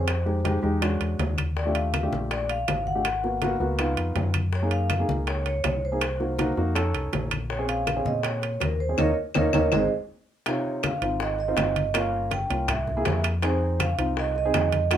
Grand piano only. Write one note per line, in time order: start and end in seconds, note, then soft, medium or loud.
0.26 0.39 G#3 medium
0.26 0.39 D#4 medium
0.26 0.39 G4 medium
0.45 0.58 G#3 medium
0.45 0.58 D#4 medium
0.45 0.58 G4 medium
0.63 0.80 G#3 medium
0.63 0.82 D#4 medium
0.63 0.82 G4 medium
0.82 1.41 G#3 medium
0.82 1.41 C#4 medium
0.82 1.41 D4 medium
0.82 1.41 F#4 medium
1.66 1.92 A3 medium
1.66 1.92 D4 medium
1.66 1.92 F4 medium
1.66 1.92 G4 medium
2.03 2.55 A3 medium
2.03 2.55 D4 medium
2.03 2.55 F4 medium
2.03 2.55 G4 medium
2.95 3.05 A3 medium
2.95 3.05 D4 medium
2.95 3.05 F4 medium
2.95 3.05 G4 medium
3.23 3.37 A#3 medium
3.23 3.36 B3 medium
3.23 3.36 F#4 medium
3.42 3.55 A#3 medium
3.42 3.55 B3 medium
3.42 3.55 F#4 loud
3.60 3.79 A#3 medium
3.60 3.78 B3 medium
3.60 3.79 F#4 medium
3.79 4.38 B3 medium
3.79 4.38 D#4 medium
3.79 4.38 F4 medium
4.62 4.88 A#3 medium
4.62 4.88 D#4 medium
4.62 4.88 G#4 medium
4.99 5.51 A#3 medium
4.99 5.51 D#4 medium
4.99 5.52 G#4 medium
5.92 6.01 A#3 medium
5.92 6.01 D#4 medium
5.92 6.01 G#4 medium
6.20 6.33 A#3 medium
6.20 6.33 D#4 medium
6.20 6.33 F#4 medium
6.38 6.51 A#3 medium
6.38 6.52 D#4 medium
6.38 6.51 F#4 medium
6.57 6.76 A#3 medium
6.57 6.74 D#4 medium
6.57 6.76 F#4 medium
6.75 7.35 C#4 medium
6.75 7.35 D#4 medium
6.75 7.35 A4 medium
7.59 7.85 C4 medium
7.59 7.85 C#4 medium
7.59 7.85 G#4 medium
7.96 8.48 C4 medium
7.96 8.48 C#4 medium
7.96 8.48 G#4 medium
8.89 8.98 C4 medium
8.89 8.97 C#4 medium
8.89 8.98 G#4 medium
8.98 9.10 A#3 medium
8.98 9.10 C#4 medium
8.98 9.10 D#4 medium
9.35 9.47 A#3 medium
9.35 9.47 C#4 medium
9.35 9.47 D#4 medium
9.54 9.65 A#3 medium
9.54 9.65 C#4 medium
9.54 9.65 D#4 medium
9.72 9.84 G#3 medium
9.72 9.84 C4 medium
9.72 9.84 D#4 medium
10.46 10.85 C3 medium
10.46 10.85 D#4 medium
10.46 10.85 F4 medium
11.02 11.34 C4 medium
11.02 11.34 D#4 medium
11.02 11.34 F4 medium
11.48 11.81 C4 medium
11.48 11.81 D#4 medium
11.48 11.81 F4 medium
11.94 12.34 A#3 medium
11.94 12.34 C#4 medium
11.94 12.34 F4 medium
12.50 12.69 A#3 medium
12.50 12.69 C#4 medium
12.50 12.69 F4 medium
12.97 13.29 A#3 medium
12.97 13.29 E4 medium
12.97 13.29 G#4 medium
13.43 13.82 C4 medium
13.43 13.82 D#4 medium
13.43 13.82 G#4 medium
13.98 14.31 C4 medium
13.98 14.31 D#4 medium
13.98 14.31 F4 medium
14.45 14.78 C4 medium
14.45 14.78 D#4 medium
14.45 14.78 G#4 medium
14.92 14.97 A3 medium
14.92 14.97 D#4 medium
14.92 14.97 F#4 medium